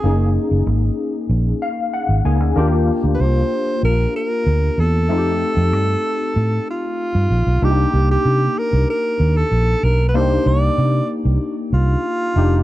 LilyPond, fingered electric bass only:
\new Staff \with { instrumentName = "Fingered electric bass" } { \clef bass \time 4/4 \key c \dorian \tempo 4 = 95 ges,,8. ges,,16 aes,,8 r8 bes,,8 r8. aes,,16 des,16 d,16 | ees,8. d,16 c,8 r8 bes,,8 r8 d,8 e,8 | f,8. f,16 g,8 r8 a,8 r8. g,16 bes,,16 ces,16 | c,8 c,8 c8 r16 c,16 r8 ees,8 bes,,8 ces,8 |
c,8 c,8 c8 r16 c,16 r8 c,8 r8 f,,8 | }